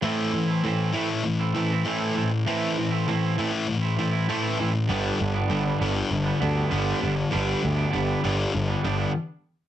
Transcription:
X:1
M:4/4
L:1/16
Q:1/4=99
K:Am
V:1 name="Clean electric guitar"
[A,,E,A,CE]3 [A,CE] [A,,E,A,CE]2 [E,A,CE]3 [A,CE] [E,A,CE] [A,CE] [A,,E,A,CE]2 [E,A,CE]2 | [A,,E,A,CE]3 [A,CE] [A,,E,A,CE]2 [E,A,CE]3 [A,CE] [E,A,CE] [A,CE] [A,,E,A,CE]2 [E,A,CE]2 | [G,,D,G,B,D]3 [G,B,D] [G,,D,G,B,D]2 [D,G,B,D]3 [G,B,D] [D,G,B,D] [G,B,D] [G,,D,G,B,D]2 [D,G,B,D]2 | [G,,D,G,B,D]3 [G,B,D] [G,,D,G,B,D]2 [D,G,B,D]3 [G,B,D] [D,G,B,D] [G,B,D] z4 |]
V:2 name="Distorted electric guitar" clef=bass
[A,,E,A,]2 [A,,E,]2 [A,,E,]2 [A,,E,A,]2 [A,,E,]2 [A,,E,]2 [A,,E,A,]2 [A,,E,]2 | [A,,E,A,]2 [A,,E,]2 [A,,E,]2 [A,,E,A,]2 [A,,E,]2 [A,,E,]2 [A,,E,A,]2 [A,,E,]2 | [G,,D,G,]2 [G,,D,]2 [G,,D,]2 [G,,D,G,]2 [G,,D,]2 [G,,D,]2 [G,,D,G,]2 [G,,D,]2 | [G,,D,G,]2 [G,,D,]2 [G,,D,]2 [G,,D,G,]2 [G,,D,]2 [G,,D,]2 z4 |]
V:3 name="Picked electric bass" clef=bass
z16 | z16 | G,,,2 G,,,2 G,,,2 G,,,2 G,,,2 D,,2 G,,,2 G,,,2 | G,,,2 D,,2 G,,,2 G,,,2 G,,,2 G,,,2 z4 |]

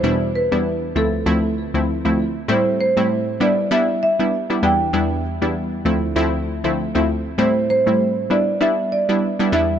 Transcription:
X:1
M:4/4
L:1/16
Q:"Swing 16ths" 1/4=98
K:Am
V:1 name="Marimba"
c2 B4 A8 z2 | c2 c4 d2 e2 e4 g2- | g6 z8 z2 | c2 c4 d2 e2 d4 e2 |]
V:2 name="Synth pluck"
[E,,B,,G,DE]3 [E,,G,B,DE]3 [D,,F,A,CE]2 [D,,F,A,CE]3 [D,,F,A,CE] z [D,,F,A,CE] z2 | [A,,G,A,CE]3 [A,,G,A,CE]3 [G,B,DE]2 [G,B,DE]3 [G,B,DE] z [G,B,DE] [E,,G,B,DE]2 | [E,,G,B,DE]3 [E,,G,B,DE]3 [D,,F,A,CE]2 [D,,F,A,CE]3 [D,,F,A,CE] z [D,,F,A,CE] z2 | [A,,G,A,CE]3 [A,,G,A,CE]3 [G,B,DE]2 [G,B,DE]3 [G,B,DE] z [G,B,DE] [E,,G,B,DE]2 |]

